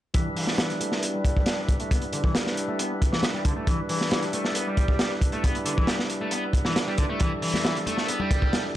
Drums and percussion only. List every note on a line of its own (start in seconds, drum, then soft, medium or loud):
0.14 kick medium
0.14 closed hi-hat medium
0.37 open hi-hat medium
0.47 snare soft
0.58 snare loud
0.58 closed hi-hat medium
0.70 closed hi-hat soft
0.81 closed hi-hat medium
0.92 snare soft
1.03 closed hi-hat medium
1.25 kick medium
1.25 closed hi-hat medium
1.37 kick medium
1.46 snare medium
1.46 closed hi-hat medium
1.69 kick medium
1.69 closed hi-hat medium
1.80 closed hi-hat soft
1.91 kick loud
1.91 closed hi-hat medium
2.02 closed hi-hat soft
2.13 closed hi-hat medium
2.24 kick medium
2.35 snare loud
2.35 closed hi-hat medium
2.47 snare soft
2.57 closed hi-hat medium
2.79 closed hi-hat medium
3.02 kick medium
3.02 closed hi-hat medium
3.13 snare medium
3.23 snare loud
3.23 closed hi-hat medium
3.45 kick medium
3.45 closed hi-hat medium
3.67 kick medium
3.67 closed hi-hat medium
3.89 open hi-hat medium
4.01 snare soft
4.11 snare loud
4.11 closed hi-hat medium
4.22 closed hi-hat soft
4.33 closed hi-hat medium
4.45 snare soft
4.55 closed hi-hat medium
4.77 kick medium
4.77 closed hi-hat medium
4.88 kick medium
4.99 snare loud
4.99 closed hi-hat medium
5.21 kick medium
5.21 closed hi-hat medium
5.32 closed hi-hat soft
5.44 kick medium
5.44 closed hi-hat medium
5.55 closed hi-hat soft
5.66 closed hi-hat medium
5.78 kick medium
5.87 snare loud
5.87 closed hi-hat medium
5.99 snare soft
6.10 closed hi-hat medium
6.31 closed hi-hat medium
6.53 kick medium
6.53 closed hi-hat medium
6.65 snare soft
6.76 snare loud
6.76 closed hi-hat medium
6.98 kick medium
6.98 closed hi-hat medium
7.20 kick loud
7.20 closed hi-hat medium
7.42 open hi-hat medium
7.54 snare soft
7.54 high conga medium
7.65 snare loud
7.65 closed hi-hat medium
7.77 closed hi-hat soft
7.87 closed hi-hat medium
7.87 high conga medium
7.97 snare soft
8.08 closed hi-hat medium
8.20 high conga medium
8.31 kick medium
8.31 closed hi-hat medium
8.42 kick medium
8.53 snare loud
8.53 closed hi-hat medium
8.53 high conga medium